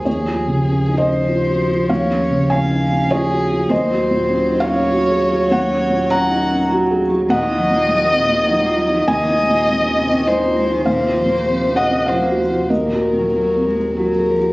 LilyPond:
<<
  \new Staff \with { instrumentName = "Violin" } { \time 3/4 \key des \major \tempo 4 = 100 aes'4. c''4. | des''4 f''4 aes'4 | c''4. des''4. | des''4 ges''4 r4 |
ees''2. | ees''2 c''4 | c''4. ees''8 c''4 | bes'2 bes'4 | }
  \new Staff \with { instrumentName = "Felt piano" } { \time 3/4 \key des \major << { des''4. ees''4. | f''4 aes''4 des''4 | ees''4. f''4. | ges''4 bes''4 r4 |
ges''2. | aes''2 ees''4 | f''4. ges''8 f''4 | ees''2~ ees''8 r8 | } \\ { \tuplet 3/2 { ees,8 f'8 des8 des'8 ees'8 des'8 f'8 ges'8 f'8 } | \tuplet 3/2 { ees,8 des'8 des8 des'8 ees'8 des'8 f'8 ges'8 f'8 } | \tuplet 3/2 { ees,8 ges'8 bes,8 des'8 ees'8 des'8 ges'8 aes'8 ges'8 } | \tuplet 3/2 { ees,8 des'8 bes,8 des'8 ees'8 des'8 ges'8 aes'8 ges'8 } |
\tuplet 3/2 { ees,8 ees'8 bes,8 bes8 c'8 bes8 ees'8 f'8 ees'8 } | \tuplet 3/2 { ees,8 ees'8 bes,8 c'8 des'8 c'8 ees'8 f'8 ees'8 } | \tuplet 3/2 { ees,8 f'8 bes,8 c'8 des'8 c'8 f'8 ges'8 f'8 } | \tuplet 3/2 { ees,8 ges'8 bes,8 bes8 c'8 bes8 ges'8 aes'8 ges'8 } | } >> }
  \new Staff \with { instrumentName = "Cello" } { \clef bass \time 3/4 \key des \major f2.~ | f2. | ges2.~ | ges2. |
bes,16 ees16 ges16 bes16 ges16 ees16 bes,16 ees16 ges16 bes16 ges16 ees16 | c16 ees16 aes16 bes16 aes16 ees16 c16 ees16 aes16 bes16 aes16 ees16 | bes,16 c16 f16 bes16 f16 c16 bes,16 c16 f16 bes16 f16 c16 | ges,16 bes,16 ees16 ges16 ges8 aes8 ges8 f8 | }
  \new Staff \with { instrumentName = "Sub bass" } { \clef bass \time 3/4 \key des \major ees,2.~ | ees,2. | ees,2.~ | ees,2.~ |
ees,2. | ees,2.~ | ees,2.~ | ees,2. | }
>>